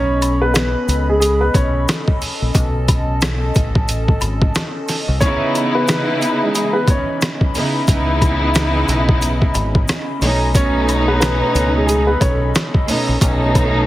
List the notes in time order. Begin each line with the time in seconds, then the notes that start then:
Already playing: B1 C#4 A4 C#5 D#5 B5
0.22 closed hi-hat, high woodblock, shaker
0.41 B3 B4
0.54 B3 B4, cross-stick, snare, closed hi-hat, shaker
0.88 C#2, closed hi-hat, shaker
1.09 G#3 G#4
1.20 G#3 G#4, closed hi-hat, shaker
1.41 B3 B4
1.54 B1 C#4 C#5, kick, closed hi-hat, high woodblock, shaker
1.88 cross-stick, snare, closed hi-hat, shaker
2.08 kick
2.19 A5, open hi-hat, shaker
2.42 A#1
2.55 B1, kick, closed hi-hat, shaker
2.88 kick, closed hi-hat, high woodblock, shaker
3.21 cross-stick, snare, closed hi-hat, shaker
3.55 A1, kick, closed hi-hat, shaker
3.75 kick
3.88 closed hi-hat, shaker
4.08 kick
4.21 G#1, closed hi-hat, high woodblock, shaker
4.42 kick
4.55 cross-stick, snare, closed hi-hat, shaker
4.88 snare, open hi-hat, shaker
5.08 C2
5.20 C#3 E3 B3 C#4 D#4 E4 C#5 D#5 B5, kick, closed hi-hat, shaker
5.55 closed hi-hat, high woodblock, shaker
5.75 B3 B4
5.88 B3 B4, cross-stick, snare, closed hi-hat, shaker
6.22 closed hi-hat, shaker
6.43 G#3 G#4
6.54 G#3 G#4, closed hi-hat, shaker
6.73 B3 B4
6.88 C#4 C#5, kick, closed hi-hat, high woodblock, shaker
7.21 cross-stick, snare, closed hi-hat, shaker
7.41 kick
7.54 C#3 B3 D#4 E4, open hi-hat, shaker
7.86 C#2 C#3 B3 D#4 E4 D#5, kick, closed hi-hat, shaker
8.22 kick, closed hi-hat, high woodblock, shaker
8.54 cross-stick, snare, closed hi-hat, shaker
8.88 B1, closed hi-hat, shaker
9.09 kick
9.22 closed hi-hat, shaker
9.42 kick
9.54 G#1, closed hi-hat, high woodblock, shaker
9.75 kick
9.88 cross-stick, snare, closed hi-hat, shaker
10.20 B1 B2 A3 C#4 D#4 A4 D#5 B5, snare, open hi-hat, shaker
10.54 B2 A3 C#4 D#4 C#5, kick, closed hi-hat, shaker
10.89 closed hi-hat, high woodblock, shaker
11.08 B3 B4
11.20 B3 B4, cross-stick, snare, closed hi-hat, shaker
11.55 C#2, closed hi-hat, shaker
11.76 G#3 G#4
11.86 G#3 G#4, closed hi-hat, shaker
12.07 B3 B4
12.21 B1 C#4 C#5, kick, closed hi-hat, high woodblock, shaker
12.55 cross-stick, snare, closed hi-hat, shaker
12.74 kick
12.86 B2 A3 C#4 D#4 A5, open hi-hat, shaker
13.08 A#1
13.19 B1 B2 A3 C#4 D#4, kick, closed hi-hat, shaker
13.55 kick, closed hi-hat, high woodblock, shaker